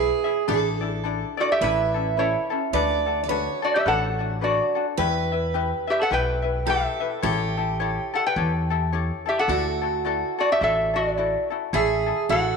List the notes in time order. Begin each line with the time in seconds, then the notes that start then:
Already playing: E4 G#4 B4 E5
0.24 E4 G#4 E5
0.48 A1 D4 E4 A4 D5
0.81 D4 E4 D5
1.04 D4 E4 A4 D5
1.37 D4 E4 F#4 D5
1.52 G4 E5
1.61 A1 C#4 E4 A4 B4 E5
1.94 C#4 E4 A4
2.17 C#4 E4 A4 B4 C#5
2.50 C#4 E4 A4
2.73 D2 D4 F#4 A4 B4 D5
3.06 D4 F#4 A4
3.24 D5
3.29 D4 F#4 A4 B4 C#5
3.62 D4 F#4 A4 D5
3.76 G4 E5
3.86 A1 D4 F#4 A4 B4 F#5
4.19 D4 F#4 A4
4.41 D4 F#4 A4 B4 D5
4.75 D4 F#4 A4
4.97 E2 E4 G4 B4 E5
5.32 E4 B4 E5
5.54 E4 G4 B4 E5
5.87 E4 G4 B4 E5
5.91 E5
6.02 A4 F#5
6.10 B1 E4 G4 B4 E5 G5
6.42 E4 B4 E5
6.66 E4 G4 A4 B4 E5
6.70 G4 E5
7.00 E4 B4 E5
7.22 A1 E4 G4 A4 C#5
7.57 E4 G4 A4
7.80 E4 G4 A4 C#5
8.14 E4 G4 A4 F#5
8.27 B4 G5
8.36 E2 E4 G4 A4 C#5
8.70 E4 G4 A4
8.92 E4 G4 A4 C#5
9.26 E4 G4 A4 E5
9.39 A4 F#5
9.48 D2 E4 F#4 A4 D5
9.81 E4 F#4 A4
10.05 E4 F#4 A4 D5
10.38 E4 F#4 A4 D5
10.52 G4 E5
10.61 A1 E4 F#4 A4 D5 E5
10.94 E4 F#4 A4 D5
11.17 E4 F#4 A4 D5
11.50 E4 F#4 A4
11.73 A1 E4 G#4 A4 C#5 E5
12.06 E4 G#4 A4
12.29 A1 E4 F#4 G#4 A4 C#5 F#5